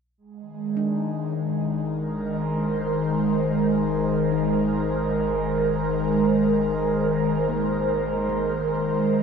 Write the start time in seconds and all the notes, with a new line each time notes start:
0.18 G#1 G#3
0.41 D#3
0.77 D4
1.80 A#4
2.26 C5
4.32 D#4
7.49 A#3
8.29 G#3